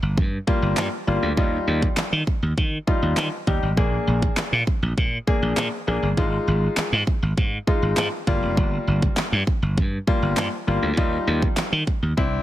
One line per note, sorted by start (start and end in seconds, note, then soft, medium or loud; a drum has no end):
0.02 0.19 G1 medium
0.17 0.37 G2 loud
0.17 kick medium
0.47 0.85 G3 medium
0.47 0.86 A#3 medium
0.47 0.86 F4 medium
0.47 kick medium
0.62 0.72 G1 medium
0.77 0.87 G2 loud
0.77 snare medium
0.77 clap loud
1.07 1.17 G1 medium
1.07 1.26 G3 medium
1.07 1.26 A#3 medium
1.07 1.27 F4 medium
1.22 1.32 D2 medium
1.37 1.57 D#2 loud
1.37 2.14 G3 medium
1.37 2.14 D#4 medium
1.37 2.14 F4 medium
1.37 kick loud
1.67 1.87 D#2 medium
1.82 kick medium
1.97 muted slap bass stroke soft
1.97 snare medium
1.97 clap loud
2.12 2.22 D#3 medium
2.27 kick medium
2.42 2.52 D#2 medium
2.58 2.77 D#3 medium
2.58 kick medium
2.87 3.25 G3 medium
2.87 3.26 D#4 medium
2.87 3.26 F4 medium
2.87 kick medium
3.02 3.12 D#2 medium
3.17 3.27 D#3 medium
3.17 snare medium
3.17 clap loud
3.47 3.57 D#2 medium
3.47 3.66 G3 medium
3.47 3.66 D#4 medium
3.47 3.67 G4 medium
3.47 kick medium
3.62 3.72 G#1 medium
3.77 3.97 A#1 loud
3.77 4.54 A#3 medium
3.77 4.54 D4 medium
3.77 4.54 G#4 medium
3.77 kick loud
4.07 4.27 A#1 medium
4.22 kick medium
4.37 muted slap bass stroke soft
4.37 snare medium
4.37 clap loud
4.52 4.62 A#2 medium
4.67 kick medium
4.82 4.92 A#1 medium
4.98 5.17 A#2 medium
4.98 kick medium
5.27 5.65 A#3 medium
5.27 5.66 D4 medium
5.27 5.66 G#4 medium
5.27 kick medium
5.42 5.52 A#1 medium
5.57 5.67 A#2 loud
5.57 snare medium
5.57 clap loud
5.87 5.97 A#1 medium
5.87 6.06 A#3 medium
5.87 6.07 D4 medium
5.87 6.07 G#4 medium
6.02 6.12 G1 medium
6.17 6.94 G#3 medium
6.17 6.94 D#4 medium
6.17 6.94 F4 medium
6.17 kick loud
6.47 6.67 G#1 medium
6.77 muted slap bass stroke soft
6.77 snare medium
6.77 clap loud
6.92 7.02 G#2 medium
7.07 kick medium
7.22 7.32 G#1 medium
7.38 7.57 G#2 medium
7.38 kick medium
7.67 8.05 G#3 medium
7.67 8.06 D#4 medium
7.67 8.06 F4 medium
7.67 kick medium
7.82 7.92 G#1 medium
7.97 8.07 G#2 loud
7.97 snare medium
7.97 clap loud
8.27 8.37 G1 loud
8.27 9.23 G3 medium
8.27 9.23 A#3 medium
8.27 9.24 F4 loud
8.27 kick medium
8.42 8.52 F1 medium
8.57 8.77 G1 loud
8.57 kick loud
8.87 9.07 G1 medium
9.02 kick medium
9.17 muted slap bass stroke soft
9.17 snare medium
9.17 clap loud
9.32 9.42 G2 medium
9.47 kick medium
9.62 9.79 G1 medium
9.78 9.97 G2 loud
9.78 kick medium
10.07 10.45 G3 medium
10.07 10.46 A#3 medium
10.07 10.46 F4 medium
10.07 kick medium
10.22 10.32 G1 medium
10.37 10.47 G2 medium
10.37 snare medium
10.37 clap loud
10.67 10.77 G1 medium
10.67 10.86 G3 medium
10.67 10.87 A#3 medium
10.67 10.87 F4 medium
10.82 10.92 D2 medium
10.97 11.17 D#2 loud
10.97 11.74 G3 medium
10.97 11.74 D#4 medium
10.97 11.74 F4 loud
10.97 kick loud
11.27 11.47 D#2 loud
11.42 kick medium
11.57 muted slap bass stroke soft
11.57 snare medium
11.57 clap loud
11.72 11.82 D#3 loud
11.87 kick medium
12.02 12.12 D#2 medium
12.17 12.37 C2 loud
12.17 12.41 C4 medium
12.17 12.41 D4 medium
12.17 12.42 E4 loud
12.17 kick medium